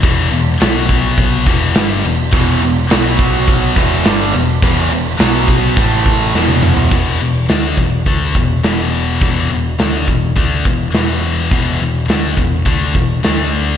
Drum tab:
CC |x-x-x-x-x-x-x-x-|x-x-x-x-x-x-x-x-|x-x-x-x-x-x-----|x---------------|
HH |----------------|----------------|----------------|--o-o-o-o-o-o-o-|
SD |----o-------o---|----o-------o---|----o-------o---|----o-------o---|
T1 |----------------|----------------|-------------o--|----------------|
T2 |----------------|----------------|--------------o-|----------------|
FT |----------------|----------------|---------------o|----------------|
BD |o-----o-o-o-----|o-----o-o-o-----|o-----o-o-o-----|o-----o-o-o-----|

CC |----------------|----------------|
HH |o-o-o-o-o-o-o-o-|o-o-o-o-o-o-o-o-|
SD |----o-------o---|----o-------o---|
T1 |----------------|----------------|
T2 |----------------|----------------|
FT |----------------|----------------|
BD |o-----o-o-o-----|o-----o-o-o-----|